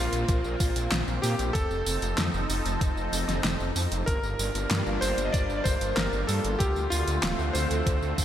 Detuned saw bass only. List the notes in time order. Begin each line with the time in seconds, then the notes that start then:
0.13 A#1
0.29 A#1
0.44 A#1
0.60 A#1
0.76 A#1
0.92 A#1
1.08 A#1
1.23 A#2
1.39 A#1
1.55 F1
1.71 F1
1.86 F1
2.02 F1
2.18 F2
2.34 F1
2.49 F1
2.65 F1
2.81 F1
2.97 F1
3.13 F1
3.28 F1
3.44 F1
3.60 F1
3.76 F2
3.92 F1
4.08 G1
4.23 G1
4.39 G1
4.55 G1
4.71 G2
4.87 G1
5.02 G1
5.18 G1
5.34 G1
5.50 G1
5.65 G1
5.81 G1
5.97 G1
6.13 G1
6.29 G2
6.44 G1
6.60 D2
6.76 D2
6.92 D2
7.08 D2
7.23 D1
7.39 D2
7.55 D2
7.71 D2
7.87 D2
8.02 D2
8.18 D2